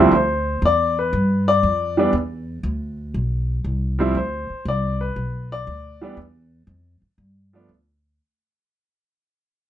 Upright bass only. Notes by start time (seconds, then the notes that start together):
Already playing: D#2
0.11 D2
0.62 E2
1.13 G2
1.63 F2
2.13 E2
2.63 D2
3.14 B1
3.64 C2
4.15 D2
4.50 muted upright bass stroke
4.65 C2
5.16 B1
5.67 D2
6.17 E2
6.67 F2
7.02 muted upright bass stroke
7.18 G2
7.69 D2